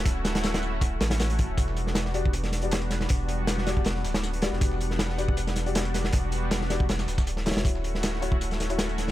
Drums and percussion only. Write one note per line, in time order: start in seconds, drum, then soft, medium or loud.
0.06 kick loud
0.06 snare loud
0.06 closed hi-hat medium
0.06 tambourine medium
0.25 snare loud
0.25 closed hi-hat medium
0.25 tambourine medium
0.35 snare loud
0.35 closed hi-hat medium
0.44 snare loud
0.44 closed hi-hat medium
0.44 tambourine medium
0.54 snare loud
0.54 closed hi-hat medium
0.63 tambourine medium
0.81 kick loud
0.81 closed hi-hat medium
0.81 tambourine medium
1.01 snare loud
1.01 closed hi-hat medium
1.01 tambourine medium
1.10 snare loud
1.10 closed hi-hat medium
1.20 snare loud
1.20 closed hi-hat medium
1.20 tambourine medium
1.30 closed hi-hat medium
1.39 kick loud
1.39 closed hi-hat medium
1.39 tambourine medium
1.58 kick loud
1.58 closed hi-hat medium
1.58 tambourine medium
1.68 snare medium
1.76 closed hi-hat medium
1.76 tambourine medium
1.87 snare soft
1.95 snare loud
1.95 closed hi-hat medium
1.95 tambourine medium
2.05 snare soft
2.14 snare medium
2.14 closed hi-hat medium
2.14 tambourine medium
2.25 kick loud
2.33 closed hi-hat medium
2.33 tambourine medium
2.44 snare soft
2.44 closed hi-hat soft
2.52 snare soft
2.52 closed hi-hat medium
2.52 tambourine medium
2.62 closed hi-hat soft
2.71 snare loud
2.71 closed hi-hat medium
2.71 tambourine medium
2.82 closed hi-hat soft
2.90 snare medium
2.90 closed hi-hat medium
2.90 tambourine medium
3.01 snare soft
3.09 kick loud
3.09 closed hi-hat medium
3.09 open hi-hat medium
3.28 closed hi-hat medium
3.28 tambourine medium
3.47 snare loud
3.47 closed hi-hat medium
3.47 tambourine medium
3.58 snare medium
3.67 snare medium
3.67 closed hi-hat medium
3.67 tambourine medium
3.77 kick medium
3.85 snare loud
3.85 closed hi-hat medium
3.85 tambourine medium
3.95 snare soft
4.05 snare loud
4.05 closed hi-hat medium
4.05 tambourine medium
4.14 snare loud
4.14 closed hi-hat medium
4.23 snare soft
4.23 tambourine loud
4.33 closed hi-hat medium
4.42 snare loud
4.42 closed hi-hat medium
4.42 tambourine medium
4.53 snare soft
4.61 kick loud
4.61 closed hi-hat medium
4.61 tambourine medium
4.72 snare medium
4.80 closed hi-hat medium
4.80 tambourine medium
4.91 snare soft
4.99 snare loud
4.99 closed hi-hat medium
4.99 tambourine medium
5.09 snare soft
5.18 snare medium
5.18 closed hi-hat medium
5.18 tambourine medium
5.28 kick loud
5.37 closed hi-hat loud
5.37 tambourine medium
5.47 snare soft
5.47 closed hi-hat soft
5.56 snare soft
5.56 closed hi-hat medium
5.56 tambourine medium
5.66 closed hi-hat soft
5.75 snare loud
5.75 closed hi-hat loud
5.75 tambourine medium
5.85 closed hi-hat soft
5.94 snare soft
5.94 closed hi-hat medium
5.94 tambourine medium
6.04 snare soft
6.12 kick loud
6.12 closed hi-hat medium
6.12 open hi-hat medium
6.32 closed hi-hat medium
6.32 tambourine medium
6.51 snare loud
6.51 closed hi-hat medium
6.51 tambourine medium
6.61 snare medium
6.70 snare medium
6.70 closed hi-hat medium
6.70 tambourine medium
6.80 kick loud
6.89 snare loud
6.89 closed hi-hat medium
6.89 tambourine medium
6.99 snare soft
6.99 snare loud
6.99 tambourine medium
7.08 snare loud
7.08 closed hi-hat medium
7.08 tambourine medium
7.18 kick medium
7.18 snare loud
7.18 tambourine medium
7.27 closed hi-hat medium
7.27 tambourine medium
7.37 snare soft
7.37 snare medium
7.46 snare medium
7.46 closed hi-hat medium
7.46 tambourine medium
7.51 snare loud
7.51 closed hi-hat medium
7.57 snare loud
7.57 closed hi-hat medium
7.65 kick loud
7.65 closed hi-hat medium
7.65 tambourine medium
7.75 snare medium
7.84 closed hi-hat medium
7.84 tambourine medium
7.95 snare soft
8.03 snare loud
8.03 closed hi-hat medium
8.03 tambourine medium
8.13 snare soft
8.22 snare medium
8.22 closed hi-hat medium
8.22 tambourine medium
8.32 kick loud
8.41 closed hi-hat medium
8.41 tambourine medium
8.51 snare soft
8.51 closed hi-hat soft
8.60 snare soft
8.60 closed hi-hat medium
8.60 tambourine medium
8.70 closed hi-hat soft
8.79 snare loud
8.79 closed hi-hat loud
8.79 tambourine loud
8.89 closed hi-hat soft
8.98 snare soft
8.98 closed hi-hat medium
8.98 tambourine medium
9.08 snare soft